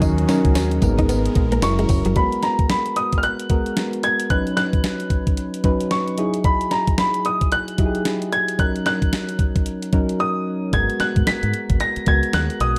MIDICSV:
0, 0, Header, 1, 9, 480
1, 0, Start_track
1, 0, Key_signature, 5, "minor"
1, 0, Tempo, 535714
1, 15, Time_signature, 4, 2, 24, 8
1, 11458, End_track
2, 0, Start_track
2, 0, Title_t, "Grand piano"
2, 0, Program_c, 0, 0
2, 0, Note_on_c, 0, 68, 88
2, 1420, Note_off_c, 0, 68, 0
2, 1459, Note_on_c, 0, 85, 82
2, 1940, Note_on_c, 0, 83, 79
2, 1951, Note_off_c, 0, 85, 0
2, 2161, Note_off_c, 0, 83, 0
2, 2179, Note_on_c, 0, 82, 82
2, 2401, Note_off_c, 0, 82, 0
2, 2417, Note_on_c, 0, 83, 79
2, 2657, Note_on_c, 0, 87, 84
2, 2663, Note_off_c, 0, 83, 0
2, 2834, Note_off_c, 0, 87, 0
2, 2847, Note_on_c, 0, 89, 69
2, 2896, Note_off_c, 0, 89, 0
2, 2898, Note_on_c, 0, 90, 90
2, 3581, Note_off_c, 0, 90, 0
2, 3618, Note_on_c, 0, 92, 85
2, 3855, Note_on_c, 0, 90, 83
2, 3864, Note_off_c, 0, 92, 0
2, 4078, Note_off_c, 0, 90, 0
2, 4093, Note_on_c, 0, 90, 94
2, 5258, Note_off_c, 0, 90, 0
2, 5296, Note_on_c, 0, 85, 84
2, 5742, Note_off_c, 0, 85, 0
2, 5778, Note_on_c, 0, 83, 84
2, 6000, Note_off_c, 0, 83, 0
2, 6017, Note_on_c, 0, 82, 78
2, 6259, Note_on_c, 0, 83, 86
2, 6263, Note_off_c, 0, 82, 0
2, 6481, Note_off_c, 0, 83, 0
2, 6502, Note_on_c, 0, 87, 82
2, 6741, Note_on_c, 0, 90, 97
2, 6746, Note_off_c, 0, 87, 0
2, 7460, Note_on_c, 0, 92, 82
2, 7479, Note_off_c, 0, 90, 0
2, 7681, Note_off_c, 0, 92, 0
2, 7701, Note_on_c, 0, 90, 88
2, 7930, Note_off_c, 0, 90, 0
2, 7943, Note_on_c, 0, 90, 106
2, 9103, Note_off_c, 0, 90, 0
2, 9140, Note_on_c, 0, 87, 95
2, 9620, Note_on_c, 0, 92, 99
2, 9632, Note_off_c, 0, 87, 0
2, 9860, Note_on_c, 0, 90, 91
2, 9865, Note_off_c, 0, 92, 0
2, 10081, Note_off_c, 0, 90, 0
2, 10100, Note_on_c, 0, 95, 97
2, 10578, Note_on_c, 0, 94, 104
2, 10592, Note_off_c, 0, 95, 0
2, 10822, Note_on_c, 0, 92, 88
2, 10824, Note_off_c, 0, 94, 0
2, 11058, Note_on_c, 0, 90, 96
2, 11066, Note_off_c, 0, 92, 0
2, 11298, Note_on_c, 0, 87, 101
2, 11304, Note_off_c, 0, 90, 0
2, 11458, Note_off_c, 0, 87, 0
2, 11458, End_track
3, 0, Start_track
3, 0, Title_t, "Synth keys"
3, 0, Program_c, 1, 88
3, 0, Control_c, 1, 64, 127
3, 0, Note_on_c, 1, 54, 100
3, 0, Note_on_c, 1, 61, 91
3, 0, Note_on_c, 1, 63, 87
3, 0, Note_on_c, 1, 70, 100
3, 180, Note_off_c, 1, 54, 0
3, 181, Note_off_c, 1, 61, 0
3, 184, Note_off_c, 1, 63, 0
3, 185, Note_off_c, 1, 70, 0
3, 254, Note_on_c, 1, 54, 99
3, 258, Note_on_c, 1, 61, 84
3, 261, Note_on_c, 1, 63, 84
3, 265, Note_on_c, 1, 70, 102
3, 731, Note_off_c, 1, 63, 0
3, 735, Note_off_c, 1, 54, 0
3, 735, Note_off_c, 1, 70, 0
3, 735, Note_on_c, 1, 56, 94
3, 737, Note_off_c, 1, 61, 0
3, 739, Note_on_c, 1, 59, 84
3, 742, Note_on_c, 1, 63, 84
3, 746, Note_on_c, 1, 70, 107
3, 747, Control_c, 1, 64, 0
3, 901, Control_c, 1, 64, 127
3, 1332, Note_off_c, 1, 56, 0
3, 1335, Note_off_c, 1, 59, 0
3, 1336, Note_off_c, 1, 63, 0
3, 1338, Note_off_c, 1, 70, 0
3, 1453, Note_on_c, 1, 54, 88
3, 1456, Note_on_c, 1, 61, 76
3, 1459, Note_on_c, 1, 64, 80
3, 1464, Note_on_c, 1, 70, 102
3, 1468, Control_c, 1, 64, 0
3, 1607, Control_c, 1, 64, 127
3, 1860, Note_off_c, 1, 54, 0
3, 1861, Note_off_c, 1, 61, 0
3, 1863, Note_off_c, 1, 64, 0
3, 1865, Note_off_c, 1, 70, 0
3, 1933, Note_on_c, 1, 56, 64
3, 1937, Note_on_c, 1, 59, 64
3, 1940, Note_on_c, 1, 66, 66
3, 1943, Note_on_c, 1, 70, 74
3, 1948, Control_c, 1, 64, 0
3, 2122, Control_c, 1, 64, 127
3, 2620, Note_off_c, 1, 56, 0
3, 2622, Note_off_c, 1, 59, 0
3, 2624, Note_off_c, 1, 66, 0
3, 2626, Note_off_c, 1, 70, 0
3, 3132, Note_on_c, 1, 56, 66
3, 3135, Note_on_c, 1, 59, 59
3, 3139, Note_on_c, 1, 66, 60
3, 3143, Note_on_c, 1, 70, 78
3, 3647, Note_off_c, 1, 56, 0
3, 3649, Note_off_c, 1, 59, 0
3, 3651, Note_off_c, 1, 66, 0
3, 3653, Note_off_c, 1, 70, 0
3, 3852, Note_on_c, 1, 54, 70
3, 3855, Note_on_c, 1, 61, 64
3, 3859, Note_on_c, 1, 63, 63
3, 3862, Note_on_c, 1, 71, 78
3, 3865, Control_c, 1, 64, 0
3, 4028, Control_c, 1, 64, 127
3, 4540, Note_off_c, 1, 54, 0
3, 4541, Note_off_c, 1, 61, 0
3, 4544, Note_off_c, 1, 63, 0
3, 4545, Note_off_c, 1, 71, 0
3, 5051, Note_on_c, 1, 54, 79
3, 5054, Note_on_c, 1, 61, 72
3, 5058, Note_on_c, 1, 63, 71
3, 5062, Note_on_c, 1, 71, 93
3, 5522, Note_off_c, 1, 54, 0
3, 5525, Note_off_c, 1, 63, 0
3, 5533, Note_on_c, 1, 54, 67
3, 5535, Note_off_c, 1, 61, 0
3, 5536, Note_on_c, 1, 63, 70
3, 5539, Note_off_c, 1, 71, 0
3, 5539, Note_on_c, 1, 64, 71
3, 5544, Note_on_c, 1, 68, 81
3, 5548, Control_c, 1, 64, 0
3, 5692, Control_c, 1, 64, 127
3, 6313, Note_off_c, 1, 54, 0
3, 6314, Note_off_c, 1, 63, 0
3, 6316, Note_off_c, 1, 64, 0
3, 6318, Note_off_c, 1, 68, 0
3, 6972, Note_on_c, 1, 54, 62
3, 6976, Note_on_c, 1, 63, 61
3, 6980, Note_on_c, 1, 64, 62
3, 6984, Note_on_c, 1, 67, 53
3, 7042, Note_on_c, 1, 68, 76
3, 7050, Note_off_c, 1, 67, 0
3, 7488, Note_off_c, 1, 54, 0
3, 7489, Note_off_c, 1, 63, 0
3, 7491, Note_off_c, 1, 64, 0
3, 7522, Note_off_c, 1, 68, 0
3, 7692, Note_on_c, 1, 54, 72
3, 7695, Note_on_c, 1, 61, 63
3, 7699, Note_on_c, 1, 63, 63
3, 7701, Note_on_c, 1, 70, 77
3, 7706, Control_c, 1, 64, 0
3, 7868, Control_c, 1, 64, 127
3, 8380, Note_off_c, 1, 54, 0
3, 8381, Note_off_c, 1, 61, 0
3, 8384, Note_off_c, 1, 63, 0
3, 8385, Note_off_c, 1, 70, 0
3, 8893, Note_on_c, 1, 54, 78
3, 8896, Note_on_c, 1, 61, 74
3, 8901, Note_on_c, 1, 63, 71
3, 8904, Note_on_c, 1, 70, 85
3, 9408, Note_off_c, 1, 54, 0
3, 9409, Note_off_c, 1, 61, 0
3, 9412, Note_off_c, 1, 63, 0
3, 9413, Note_off_c, 1, 70, 0
3, 9613, Note_on_c, 1, 56, 70
3, 9617, Note_on_c, 1, 59, 61
3, 9620, Note_on_c, 1, 66, 65
3, 9624, Note_on_c, 1, 70, 79
3, 9627, Control_c, 1, 64, 0
3, 9804, Control_c, 1, 64, 127
3, 10301, Note_off_c, 1, 56, 0
3, 10302, Note_off_c, 1, 59, 0
3, 10304, Note_off_c, 1, 66, 0
3, 10306, Note_off_c, 1, 70, 0
3, 10811, Note_on_c, 1, 56, 62
3, 10814, Note_on_c, 1, 59, 62
3, 10818, Note_on_c, 1, 66, 63
3, 10821, Note_on_c, 1, 70, 73
3, 11327, Note_off_c, 1, 56, 0
3, 11329, Note_off_c, 1, 59, 0
3, 11330, Note_off_c, 1, 66, 0
3, 11332, Note_off_c, 1, 70, 0
3, 11458, End_track
4, 0, Start_track
4, 0, Title_t, "Analog synth pad"
4, 0, Program_c, 2, 89
4, 0, Note_on_c, 2, 51, 79
4, 0, Note_on_c, 2, 61, 69
4, 0, Note_on_c, 2, 66, 89
4, 726, Note_off_c, 2, 51, 0
4, 726, Note_off_c, 2, 61, 0
4, 726, Note_off_c, 2, 66, 0
4, 736, Note_on_c, 2, 56, 76
4, 737, Note_on_c, 2, 59, 79
4, 738, Note_on_c, 2, 70, 67
4, 1441, Note_off_c, 2, 70, 0
4, 1448, Note_off_c, 2, 56, 0
4, 1449, Note_off_c, 2, 59, 0
4, 1450, Note_on_c, 2, 54, 74
4, 1451, Note_on_c, 2, 64, 66
4, 1451, Note_on_c, 2, 70, 84
4, 1928, Note_off_c, 2, 54, 0
4, 1928, Note_off_c, 2, 64, 0
4, 1928, Note_off_c, 2, 70, 0
4, 11458, End_track
5, 0, Start_track
5, 0, Title_t, "Clean electric guitar"
5, 0, Program_c, 3, 27
5, 15, Note_on_c, 3, 63, 89
5, 100, Note_off_c, 3, 63, 0
5, 259, Note_on_c, 3, 61, 84
5, 342, Note_off_c, 3, 61, 0
5, 497, Note_on_c, 3, 61, 83
5, 580, Note_off_c, 3, 61, 0
5, 885, Note_on_c, 3, 63, 79
5, 937, Note_off_c, 3, 63, 0
5, 978, Note_on_c, 3, 59, 82
5, 1061, Note_off_c, 3, 59, 0
5, 1364, Note_on_c, 3, 58, 74
5, 1417, Note_off_c, 3, 58, 0
5, 1604, Note_on_c, 3, 56, 79
5, 1657, Note_off_c, 3, 56, 0
5, 1844, Note_on_c, 3, 54, 72
5, 1897, Note_off_c, 3, 54, 0
5, 11458, End_track
6, 0, Start_track
6, 0, Title_t, "Fingered electric bass"
6, 0, Program_c, 4, 33
6, 17, Note_on_c, 4, 39, 111
6, 220, Note_off_c, 4, 39, 0
6, 402, Note_on_c, 4, 37, 86
6, 481, Note_off_c, 4, 37, 0
6, 494, Note_on_c, 4, 39, 98
6, 698, Note_off_c, 4, 39, 0
6, 733, Note_on_c, 4, 32, 103
6, 1142, Note_off_c, 4, 32, 0
6, 1216, Note_on_c, 4, 34, 89
6, 1420, Note_off_c, 4, 34, 0
6, 1454, Note_on_c, 4, 30, 104
6, 1658, Note_off_c, 4, 30, 0
6, 1696, Note_on_c, 4, 30, 103
6, 1820, Note_off_c, 4, 30, 0
6, 1837, Note_on_c, 4, 30, 85
6, 1918, Note_off_c, 4, 30, 0
6, 9616, Note_on_c, 4, 32, 101
6, 9740, Note_off_c, 4, 32, 0
6, 10000, Note_on_c, 4, 44, 90
6, 10080, Note_off_c, 4, 44, 0
6, 10243, Note_on_c, 4, 44, 90
6, 10322, Note_off_c, 4, 44, 0
6, 10481, Note_on_c, 4, 32, 83
6, 10560, Note_off_c, 4, 32, 0
6, 10814, Note_on_c, 4, 37, 87
6, 10939, Note_off_c, 4, 37, 0
6, 11055, Note_on_c, 4, 39, 86
6, 11179, Note_off_c, 4, 39, 0
6, 11293, Note_on_c, 4, 35, 91
6, 11419, Note_off_c, 4, 35, 0
6, 11458, End_track
7, 0, Start_track
7, 0, Title_t, "Muted clean electric guitar strokes"
7, 162, Note_on_c, 9, 29, 44
7, 252, Note_off_c, 9, 29, 0
7, 738, Note_on_c, 9, 29, 47
7, 828, Note_off_c, 9, 29, 0
7, 1218, Note_on_c, 9, 29, 45
7, 1308, Note_off_c, 9, 29, 0
7, 1696, Note_on_c, 9, 29, 48
7, 1786, Note_off_c, 9, 29, 0
7, 11458, End_track
8, 0, Start_track
8, 0, Title_t, "Muted fingered electric bass strokes"
8, 9856, Note_on_c, 9, 29, 46
8, 9946, Note_off_c, 9, 29, 0
8, 10097, Note_on_c, 9, 29, 44
8, 10187, Note_off_c, 9, 29, 0
8, 10723, Note_on_c, 9, 29, 46
8, 10812, Note_off_c, 9, 29, 0
8, 11458, End_track
9, 0, Start_track
9, 0, Title_t, "Drums"
9, 16, Note_on_c, 9, 36, 119
9, 16, Note_on_c, 9, 42, 73
9, 16, Note_on_c, 9, 54, 66
9, 105, Note_off_c, 9, 42, 0
9, 105, Note_off_c, 9, 54, 0
9, 106, Note_off_c, 9, 36, 0
9, 163, Note_on_c, 9, 42, 49
9, 253, Note_off_c, 9, 42, 0
9, 257, Note_on_c, 9, 38, 73
9, 258, Note_on_c, 9, 42, 72
9, 258, Note_on_c, 9, 54, 66
9, 347, Note_off_c, 9, 38, 0
9, 348, Note_off_c, 9, 42, 0
9, 348, Note_off_c, 9, 54, 0
9, 401, Note_on_c, 9, 36, 90
9, 401, Note_on_c, 9, 42, 54
9, 491, Note_off_c, 9, 36, 0
9, 491, Note_off_c, 9, 42, 0
9, 495, Note_on_c, 9, 54, 97
9, 497, Note_on_c, 9, 38, 120
9, 497, Note_on_c, 9, 42, 79
9, 584, Note_off_c, 9, 54, 0
9, 586, Note_off_c, 9, 38, 0
9, 586, Note_off_c, 9, 42, 0
9, 640, Note_on_c, 9, 42, 57
9, 729, Note_off_c, 9, 42, 0
9, 733, Note_on_c, 9, 36, 94
9, 735, Note_on_c, 9, 42, 72
9, 737, Note_on_c, 9, 54, 66
9, 823, Note_off_c, 9, 36, 0
9, 825, Note_off_c, 9, 42, 0
9, 827, Note_off_c, 9, 54, 0
9, 883, Note_on_c, 9, 36, 83
9, 884, Note_on_c, 9, 42, 63
9, 973, Note_off_c, 9, 36, 0
9, 974, Note_off_c, 9, 42, 0
9, 977, Note_on_c, 9, 42, 81
9, 977, Note_on_c, 9, 54, 56
9, 1066, Note_off_c, 9, 54, 0
9, 1067, Note_off_c, 9, 42, 0
9, 1125, Note_on_c, 9, 42, 54
9, 1213, Note_off_c, 9, 42, 0
9, 1213, Note_on_c, 9, 42, 67
9, 1216, Note_on_c, 9, 36, 93
9, 1303, Note_off_c, 9, 42, 0
9, 1306, Note_off_c, 9, 36, 0
9, 1361, Note_on_c, 9, 42, 52
9, 1451, Note_off_c, 9, 42, 0
9, 1455, Note_on_c, 9, 38, 97
9, 1455, Note_on_c, 9, 42, 78
9, 1456, Note_on_c, 9, 54, 89
9, 1544, Note_off_c, 9, 38, 0
9, 1545, Note_off_c, 9, 42, 0
9, 1545, Note_off_c, 9, 54, 0
9, 1602, Note_on_c, 9, 42, 50
9, 1691, Note_off_c, 9, 42, 0
9, 1692, Note_on_c, 9, 46, 65
9, 1693, Note_on_c, 9, 54, 62
9, 1696, Note_on_c, 9, 36, 92
9, 1782, Note_off_c, 9, 46, 0
9, 1782, Note_off_c, 9, 54, 0
9, 1786, Note_off_c, 9, 36, 0
9, 1836, Note_on_c, 9, 42, 58
9, 1926, Note_off_c, 9, 42, 0
9, 1933, Note_on_c, 9, 42, 69
9, 1934, Note_on_c, 9, 36, 106
9, 2022, Note_off_c, 9, 42, 0
9, 2024, Note_off_c, 9, 36, 0
9, 2082, Note_on_c, 9, 42, 46
9, 2172, Note_off_c, 9, 42, 0
9, 2174, Note_on_c, 9, 38, 64
9, 2175, Note_on_c, 9, 42, 66
9, 2263, Note_off_c, 9, 38, 0
9, 2264, Note_off_c, 9, 42, 0
9, 2319, Note_on_c, 9, 42, 50
9, 2320, Note_on_c, 9, 36, 91
9, 2409, Note_off_c, 9, 42, 0
9, 2410, Note_off_c, 9, 36, 0
9, 2415, Note_on_c, 9, 38, 114
9, 2416, Note_on_c, 9, 42, 71
9, 2505, Note_off_c, 9, 38, 0
9, 2505, Note_off_c, 9, 42, 0
9, 2559, Note_on_c, 9, 42, 49
9, 2649, Note_off_c, 9, 42, 0
9, 2654, Note_on_c, 9, 42, 61
9, 2743, Note_off_c, 9, 42, 0
9, 2800, Note_on_c, 9, 42, 55
9, 2802, Note_on_c, 9, 36, 69
9, 2890, Note_off_c, 9, 42, 0
9, 2892, Note_off_c, 9, 36, 0
9, 2894, Note_on_c, 9, 42, 70
9, 2984, Note_off_c, 9, 42, 0
9, 3042, Note_on_c, 9, 42, 54
9, 3132, Note_off_c, 9, 42, 0
9, 3133, Note_on_c, 9, 42, 67
9, 3134, Note_on_c, 9, 36, 89
9, 3222, Note_off_c, 9, 42, 0
9, 3224, Note_off_c, 9, 36, 0
9, 3280, Note_on_c, 9, 42, 45
9, 3370, Note_off_c, 9, 42, 0
9, 3376, Note_on_c, 9, 38, 88
9, 3376, Note_on_c, 9, 42, 71
9, 3465, Note_off_c, 9, 38, 0
9, 3465, Note_off_c, 9, 42, 0
9, 3523, Note_on_c, 9, 42, 44
9, 3613, Note_off_c, 9, 42, 0
9, 3614, Note_on_c, 9, 42, 65
9, 3703, Note_off_c, 9, 42, 0
9, 3760, Note_on_c, 9, 42, 57
9, 3849, Note_off_c, 9, 42, 0
9, 3854, Note_on_c, 9, 36, 108
9, 3854, Note_on_c, 9, 42, 73
9, 3944, Note_off_c, 9, 36, 0
9, 3944, Note_off_c, 9, 42, 0
9, 4003, Note_on_c, 9, 42, 45
9, 4093, Note_off_c, 9, 42, 0
9, 4096, Note_on_c, 9, 38, 63
9, 4097, Note_on_c, 9, 42, 65
9, 4185, Note_off_c, 9, 38, 0
9, 4186, Note_off_c, 9, 42, 0
9, 4241, Note_on_c, 9, 36, 85
9, 4241, Note_on_c, 9, 42, 51
9, 4330, Note_off_c, 9, 36, 0
9, 4330, Note_off_c, 9, 42, 0
9, 4335, Note_on_c, 9, 38, 109
9, 4335, Note_on_c, 9, 42, 73
9, 4425, Note_off_c, 9, 38, 0
9, 4425, Note_off_c, 9, 42, 0
9, 4479, Note_on_c, 9, 42, 51
9, 4568, Note_off_c, 9, 42, 0
9, 4571, Note_on_c, 9, 36, 83
9, 4573, Note_on_c, 9, 42, 63
9, 4661, Note_off_c, 9, 36, 0
9, 4662, Note_off_c, 9, 42, 0
9, 4721, Note_on_c, 9, 36, 81
9, 4721, Note_on_c, 9, 42, 55
9, 4811, Note_off_c, 9, 36, 0
9, 4811, Note_off_c, 9, 42, 0
9, 4814, Note_on_c, 9, 42, 74
9, 4904, Note_off_c, 9, 42, 0
9, 4963, Note_on_c, 9, 42, 51
9, 5052, Note_off_c, 9, 42, 0
9, 5052, Note_on_c, 9, 42, 62
9, 5054, Note_on_c, 9, 36, 89
9, 5141, Note_off_c, 9, 42, 0
9, 5144, Note_off_c, 9, 36, 0
9, 5201, Note_on_c, 9, 42, 47
9, 5291, Note_off_c, 9, 42, 0
9, 5294, Note_on_c, 9, 38, 86
9, 5295, Note_on_c, 9, 42, 72
9, 5384, Note_off_c, 9, 38, 0
9, 5384, Note_off_c, 9, 42, 0
9, 5444, Note_on_c, 9, 42, 43
9, 5533, Note_off_c, 9, 42, 0
9, 5534, Note_on_c, 9, 42, 66
9, 5623, Note_off_c, 9, 42, 0
9, 5677, Note_on_c, 9, 42, 55
9, 5767, Note_off_c, 9, 42, 0
9, 5773, Note_on_c, 9, 42, 65
9, 5774, Note_on_c, 9, 36, 107
9, 5862, Note_off_c, 9, 42, 0
9, 5863, Note_off_c, 9, 36, 0
9, 5922, Note_on_c, 9, 42, 44
9, 6011, Note_off_c, 9, 42, 0
9, 6013, Note_on_c, 9, 38, 68
9, 6014, Note_on_c, 9, 42, 66
9, 6103, Note_off_c, 9, 38, 0
9, 6104, Note_off_c, 9, 42, 0
9, 6159, Note_on_c, 9, 42, 53
9, 6160, Note_on_c, 9, 36, 85
9, 6249, Note_off_c, 9, 42, 0
9, 6250, Note_off_c, 9, 36, 0
9, 6254, Note_on_c, 9, 38, 118
9, 6254, Note_on_c, 9, 42, 66
9, 6344, Note_off_c, 9, 38, 0
9, 6344, Note_off_c, 9, 42, 0
9, 6398, Note_on_c, 9, 42, 50
9, 6488, Note_off_c, 9, 42, 0
9, 6494, Note_on_c, 9, 42, 67
9, 6584, Note_off_c, 9, 42, 0
9, 6641, Note_on_c, 9, 42, 50
9, 6642, Note_on_c, 9, 36, 76
9, 6731, Note_off_c, 9, 42, 0
9, 6732, Note_off_c, 9, 36, 0
9, 6735, Note_on_c, 9, 42, 73
9, 6825, Note_off_c, 9, 42, 0
9, 6881, Note_on_c, 9, 42, 54
9, 6971, Note_off_c, 9, 42, 0
9, 6972, Note_on_c, 9, 42, 67
9, 6975, Note_on_c, 9, 36, 86
9, 7062, Note_off_c, 9, 42, 0
9, 7065, Note_off_c, 9, 36, 0
9, 7122, Note_on_c, 9, 42, 44
9, 7211, Note_off_c, 9, 42, 0
9, 7216, Note_on_c, 9, 38, 87
9, 7216, Note_on_c, 9, 42, 71
9, 7305, Note_off_c, 9, 38, 0
9, 7306, Note_off_c, 9, 42, 0
9, 7364, Note_on_c, 9, 42, 45
9, 7453, Note_off_c, 9, 42, 0
9, 7459, Note_on_c, 9, 42, 67
9, 7548, Note_off_c, 9, 42, 0
9, 7602, Note_on_c, 9, 42, 55
9, 7691, Note_off_c, 9, 42, 0
9, 7696, Note_on_c, 9, 36, 110
9, 7698, Note_on_c, 9, 42, 69
9, 7786, Note_off_c, 9, 36, 0
9, 7788, Note_off_c, 9, 42, 0
9, 7846, Note_on_c, 9, 42, 46
9, 7935, Note_off_c, 9, 42, 0
9, 7937, Note_on_c, 9, 38, 63
9, 7938, Note_on_c, 9, 42, 70
9, 8027, Note_off_c, 9, 38, 0
9, 8028, Note_off_c, 9, 42, 0
9, 8082, Note_on_c, 9, 36, 85
9, 8084, Note_on_c, 9, 42, 52
9, 8172, Note_off_c, 9, 36, 0
9, 8173, Note_off_c, 9, 42, 0
9, 8179, Note_on_c, 9, 38, 110
9, 8179, Note_on_c, 9, 42, 68
9, 8268, Note_off_c, 9, 38, 0
9, 8268, Note_off_c, 9, 42, 0
9, 8321, Note_on_c, 9, 42, 52
9, 8410, Note_off_c, 9, 42, 0
9, 8413, Note_on_c, 9, 36, 92
9, 8416, Note_on_c, 9, 42, 61
9, 8503, Note_off_c, 9, 36, 0
9, 8505, Note_off_c, 9, 42, 0
9, 8563, Note_on_c, 9, 36, 80
9, 8563, Note_on_c, 9, 42, 55
9, 8652, Note_off_c, 9, 36, 0
9, 8652, Note_off_c, 9, 42, 0
9, 8654, Note_on_c, 9, 42, 70
9, 8744, Note_off_c, 9, 42, 0
9, 8803, Note_on_c, 9, 42, 54
9, 8893, Note_off_c, 9, 42, 0
9, 8894, Note_on_c, 9, 42, 64
9, 8895, Note_on_c, 9, 36, 86
9, 8984, Note_off_c, 9, 42, 0
9, 8985, Note_off_c, 9, 36, 0
9, 9043, Note_on_c, 9, 42, 44
9, 9132, Note_off_c, 9, 42, 0
9, 9614, Note_on_c, 9, 42, 70
9, 9615, Note_on_c, 9, 36, 103
9, 9704, Note_off_c, 9, 36, 0
9, 9704, Note_off_c, 9, 42, 0
9, 9763, Note_on_c, 9, 42, 48
9, 9853, Note_off_c, 9, 42, 0
9, 9854, Note_on_c, 9, 38, 63
9, 9855, Note_on_c, 9, 42, 66
9, 9944, Note_off_c, 9, 38, 0
9, 9945, Note_off_c, 9, 42, 0
9, 10000, Note_on_c, 9, 36, 90
9, 10001, Note_on_c, 9, 42, 50
9, 10090, Note_off_c, 9, 36, 0
9, 10090, Note_off_c, 9, 42, 0
9, 10097, Note_on_c, 9, 38, 110
9, 10097, Note_on_c, 9, 42, 69
9, 10187, Note_off_c, 9, 38, 0
9, 10187, Note_off_c, 9, 42, 0
9, 10240, Note_on_c, 9, 42, 53
9, 10330, Note_off_c, 9, 42, 0
9, 10336, Note_on_c, 9, 42, 66
9, 10425, Note_off_c, 9, 42, 0
9, 10480, Note_on_c, 9, 42, 55
9, 10482, Note_on_c, 9, 36, 78
9, 10569, Note_off_c, 9, 42, 0
9, 10571, Note_off_c, 9, 36, 0
9, 10573, Note_on_c, 9, 42, 70
9, 10663, Note_off_c, 9, 42, 0
9, 10718, Note_on_c, 9, 42, 53
9, 10808, Note_off_c, 9, 42, 0
9, 10809, Note_on_c, 9, 42, 67
9, 10813, Note_on_c, 9, 36, 91
9, 10899, Note_off_c, 9, 42, 0
9, 10903, Note_off_c, 9, 36, 0
9, 10958, Note_on_c, 9, 42, 46
9, 11048, Note_off_c, 9, 42, 0
9, 11051, Note_on_c, 9, 38, 95
9, 11051, Note_on_c, 9, 42, 71
9, 11141, Note_off_c, 9, 38, 0
9, 11141, Note_off_c, 9, 42, 0
9, 11200, Note_on_c, 9, 42, 46
9, 11290, Note_off_c, 9, 42, 0
9, 11293, Note_on_c, 9, 42, 64
9, 11383, Note_off_c, 9, 42, 0
9, 11458, End_track
0, 0, End_of_file